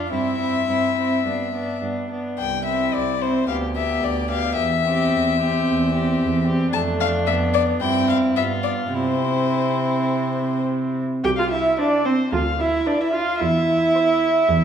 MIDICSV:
0, 0, Header, 1, 5, 480
1, 0, Start_track
1, 0, Key_signature, 0, "major"
1, 0, Tempo, 564440
1, 105, Time_signature, 4, 2, 24, 8
1, 2504, Tempo, 547445
1, 4424, Tempo, 535236
1, 6824, Tempo, 571429
1, 9704, Tempo, 541516
1, 12721, End_track
2, 0, Start_track
2, 0, Title_t, "Violin"
2, 0, Program_c, 0, 40
2, 109, Note_on_c, 0, 76, 55
2, 1523, Note_off_c, 0, 76, 0
2, 2028, Note_on_c, 0, 79, 52
2, 2250, Note_off_c, 0, 79, 0
2, 2254, Note_on_c, 0, 76, 50
2, 2499, Note_on_c, 0, 74, 50
2, 2512, Note_off_c, 0, 76, 0
2, 2743, Note_on_c, 0, 72, 48
2, 2757, Note_off_c, 0, 74, 0
2, 2966, Note_off_c, 0, 72, 0
2, 2972, Note_on_c, 0, 77, 49
2, 3042, Note_off_c, 0, 77, 0
2, 3219, Note_on_c, 0, 76, 48
2, 3464, Note_on_c, 0, 74, 55
2, 3477, Note_off_c, 0, 76, 0
2, 3693, Note_off_c, 0, 74, 0
2, 3699, Note_on_c, 0, 77, 59
2, 3936, Note_off_c, 0, 77, 0
2, 3941, Note_on_c, 0, 76, 54
2, 5588, Note_off_c, 0, 76, 0
2, 5857, Note_on_c, 0, 81, 60
2, 5929, Note_off_c, 0, 81, 0
2, 6104, Note_on_c, 0, 77, 64
2, 6175, Note_off_c, 0, 77, 0
2, 6339, Note_on_c, 0, 76, 59
2, 6410, Note_off_c, 0, 76, 0
2, 6580, Note_on_c, 0, 74, 64
2, 6652, Note_off_c, 0, 74, 0
2, 6822, Note_on_c, 0, 79, 64
2, 7049, Note_off_c, 0, 79, 0
2, 7059, Note_on_c, 0, 77, 56
2, 7127, Note_off_c, 0, 77, 0
2, 7288, Note_on_c, 0, 76, 57
2, 7356, Note_off_c, 0, 76, 0
2, 7515, Note_on_c, 0, 74, 51
2, 7582, Note_off_c, 0, 74, 0
2, 7769, Note_on_c, 0, 72, 50
2, 9193, Note_off_c, 0, 72, 0
2, 10187, Note_on_c, 0, 72, 41
2, 10547, Note_off_c, 0, 72, 0
2, 11140, Note_on_c, 0, 71, 50
2, 11500, Note_off_c, 0, 71, 0
2, 12108, Note_on_c, 0, 72, 53
2, 12462, Note_off_c, 0, 72, 0
2, 12721, End_track
3, 0, Start_track
3, 0, Title_t, "Violin"
3, 0, Program_c, 1, 40
3, 0, Note_on_c, 1, 65, 37
3, 96, Note_off_c, 1, 65, 0
3, 102, Note_on_c, 1, 64, 36
3, 333, Note_off_c, 1, 64, 0
3, 338, Note_on_c, 1, 64, 35
3, 579, Note_off_c, 1, 64, 0
3, 587, Note_on_c, 1, 64, 30
3, 822, Note_off_c, 1, 64, 0
3, 827, Note_on_c, 1, 64, 32
3, 1062, Note_off_c, 1, 64, 0
3, 1067, Note_on_c, 1, 62, 26
3, 1297, Note_off_c, 1, 62, 0
3, 1302, Note_on_c, 1, 62, 30
3, 1532, Note_off_c, 1, 62, 0
3, 1537, Note_on_c, 1, 62, 32
3, 1782, Note_off_c, 1, 62, 0
3, 1793, Note_on_c, 1, 62, 29
3, 2029, Note_off_c, 1, 62, 0
3, 2259, Note_on_c, 1, 64, 34
3, 2728, Note_off_c, 1, 64, 0
3, 2734, Note_on_c, 1, 64, 29
3, 2969, Note_off_c, 1, 64, 0
3, 2974, Note_on_c, 1, 67, 29
3, 3212, Note_off_c, 1, 67, 0
3, 3223, Note_on_c, 1, 67, 36
3, 3689, Note_off_c, 1, 67, 0
3, 3694, Note_on_c, 1, 67, 37
3, 3934, Note_off_c, 1, 67, 0
3, 4174, Note_on_c, 1, 67, 37
3, 4649, Note_off_c, 1, 67, 0
3, 4654, Note_on_c, 1, 67, 38
3, 5127, Note_off_c, 1, 67, 0
3, 5136, Note_on_c, 1, 67, 38
3, 5611, Note_off_c, 1, 67, 0
3, 5619, Note_on_c, 1, 67, 39
3, 5849, Note_off_c, 1, 67, 0
3, 5854, Note_on_c, 1, 62, 53
3, 6820, Note_on_c, 1, 64, 43
3, 6833, Note_off_c, 1, 62, 0
3, 7294, Note_on_c, 1, 65, 46
3, 7306, Note_off_c, 1, 64, 0
3, 7780, Note_on_c, 1, 64, 42
3, 7793, Note_off_c, 1, 65, 0
3, 9535, Note_off_c, 1, 64, 0
3, 9706, Note_on_c, 1, 79, 61
3, 9754, Note_off_c, 1, 79, 0
3, 9819, Note_on_c, 1, 77, 49
3, 9934, Note_off_c, 1, 77, 0
3, 9939, Note_on_c, 1, 76, 48
3, 10181, Note_off_c, 1, 76, 0
3, 10191, Note_on_c, 1, 74, 46
3, 10427, Note_on_c, 1, 72, 46
3, 10440, Note_off_c, 1, 74, 0
3, 10669, Note_off_c, 1, 72, 0
3, 10673, Note_on_c, 1, 77, 48
3, 10911, Note_on_c, 1, 76, 51
3, 10924, Note_off_c, 1, 77, 0
3, 11149, Note_on_c, 1, 74, 55
3, 11162, Note_off_c, 1, 76, 0
3, 11270, Note_on_c, 1, 76, 46
3, 11283, Note_off_c, 1, 74, 0
3, 11391, Note_on_c, 1, 77, 55
3, 11404, Note_off_c, 1, 76, 0
3, 11615, Note_off_c, 1, 77, 0
3, 11620, Note_on_c, 1, 76, 60
3, 12721, Note_off_c, 1, 76, 0
3, 12721, End_track
4, 0, Start_track
4, 0, Title_t, "Viola"
4, 0, Program_c, 2, 41
4, 0, Note_on_c, 2, 62, 34
4, 88, Note_off_c, 2, 62, 0
4, 93, Note_on_c, 2, 60, 38
4, 336, Note_off_c, 2, 60, 0
4, 341, Note_on_c, 2, 60, 34
4, 571, Note_off_c, 2, 60, 0
4, 576, Note_on_c, 2, 60, 38
4, 816, Note_off_c, 2, 60, 0
4, 821, Note_on_c, 2, 60, 35
4, 1061, Note_off_c, 2, 60, 0
4, 1066, Note_on_c, 2, 59, 31
4, 1291, Note_off_c, 2, 59, 0
4, 1296, Note_on_c, 2, 59, 29
4, 1539, Note_off_c, 2, 59, 0
4, 1544, Note_on_c, 2, 59, 29
4, 1778, Note_off_c, 2, 59, 0
4, 1783, Note_on_c, 2, 59, 31
4, 2024, Note_off_c, 2, 59, 0
4, 2255, Note_on_c, 2, 60, 30
4, 2723, Note_off_c, 2, 60, 0
4, 2729, Note_on_c, 2, 60, 37
4, 2960, Note_off_c, 2, 60, 0
4, 2966, Note_on_c, 2, 59, 35
4, 3199, Note_off_c, 2, 59, 0
4, 3204, Note_on_c, 2, 59, 34
4, 3679, Note_off_c, 2, 59, 0
4, 3684, Note_on_c, 2, 59, 32
4, 3929, Note_off_c, 2, 59, 0
4, 4173, Note_on_c, 2, 60, 35
4, 4648, Note_off_c, 2, 60, 0
4, 4656, Note_on_c, 2, 60, 41
4, 5128, Note_off_c, 2, 60, 0
4, 5134, Note_on_c, 2, 60, 39
4, 5609, Note_off_c, 2, 60, 0
4, 5619, Note_on_c, 2, 60, 40
4, 5856, Note_off_c, 2, 60, 0
4, 5864, Note_on_c, 2, 57, 50
4, 6336, Note_on_c, 2, 59, 51
4, 6350, Note_off_c, 2, 57, 0
4, 6816, Note_on_c, 2, 60, 49
4, 6829, Note_off_c, 2, 59, 0
4, 7283, Note_on_c, 2, 59, 44
4, 7296, Note_off_c, 2, 60, 0
4, 7757, Note_off_c, 2, 59, 0
4, 7762, Note_on_c, 2, 60, 41
4, 9492, Note_off_c, 2, 60, 0
4, 9702, Note_on_c, 2, 67, 64
4, 9751, Note_off_c, 2, 67, 0
4, 9834, Note_on_c, 2, 65, 56
4, 9881, Note_off_c, 2, 65, 0
4, 9942, Note_on_c, 2, 64, 56
4, 10187, Note_on_c, 2, 62, 65
4, 10200, Note_off_c, 2, 64, 0
4, 10421, Note_off_c, 2, 62, 0
4, 10427, Note_on_c, 2, 60, 59
4, 10498, Note_off_c, 2, 60, 0
4, 10664, Note_on_c, 2, 65, 55
4, 10735, Note_off_c, 2, 65, 0
4, 10912, Note_on_c, 2, 64, 59
4, 11149, Note_on_c, 2, 62, 56
4, 11162, Note_off_c, 2, 64, 0
4, 11265, Note_off_c, 2, 62, 0
4, 11270, Note_on_c, 2, 64, 53
4, 11377, Note_off_c, 2, 64, 0
4, 11382, Note_on_c, 2, 65, 65
4, 11625, Note_on_c, 2, 64, 72
4, 11638, Note_off_c, 2, 65, 0
4, 12721, Note_off_c, 2, 64, 0
4, 12721, End_track
5, 0, Start_track
5, 0, Title_t, "Cello"
5, 0, Program_c, 3, 42
5, 105, Note_on_c, 3, 43, 48
5, 509, Note_off_c, 3, 43, 0
5, 585, Note_on_c, 3, 43, 38
5, 991, Note_off_c, 3, 43, 0
5, 1067, Note_on_c, 3, 43, 44
5, 1470, Note_off_c, 3, 43, 0
5, 1547, Note_on_c, 3, 43, 41
5, 1954, Note_off_c, 3, 43, 0
5, 2033, Note_on_c, 3, 36, 42
5, 2448, Note_off_c, 3, 36, 0
5, 2505, Note_on_c, 3, 36, 37
5, 2925, Note_off_c, 3, 36, 0
5, 2979, Note_on_c, 3, 38, 42
5, 3402, Note_off_c, 3, 38, 0
5, 3456, Note_on_c, 3, 38, 42
5, 3884, Note_off_c, 3, 38, 0
5, 3943, Note_on_c, 3, 40, 42
5, 4367, Note_off_c, 3, 40, 0
5, 4430, Note_on_c, 3, 40, 41
5, 4850, Note_off_c, 3, 40, 0
5, 4911, Note_on_c, 3, 40, 50
5, 5329, Note_off_c, 3, 40, 0
5, 5391, Note_on_c, 3, 40, 51
5, 5811, Note_off_c, 3, 40, 0
5, 5867, Note_on_c, 3, 41, 52
5, 6787, Note_off_c, 3, 41, 0
5, 6819, Note_on_c, 3, 43, 49
5, 7279, Note_off_c, 3, 43, 0
5, 7295, Note_on_c, 3, 43, 47
5, 7764, Note_off_c, 3, 43, 0
5, 7783, Note_on_c, 3, 48, 42
5, 9503, Note_off_c, 3, 48, 0
5, 9707, Note_on_c, 3, 36, 53
5, 10091, Note_off_c, 3, 36, 0
5, 10670, Note_on_c, 3, 38, 55
5, 11050, Note_off_c, 3, 38, 0
5, 11631, Note_on_c, 3, 40, 58
5, 12009, Note_off_c, 3, 40, 0
5, 12586, Note_on_c, 3, 40, 68
5, 12721, Note_off_c, 3, 40, 0
5, 12721, End_track
0, 0, End_of_file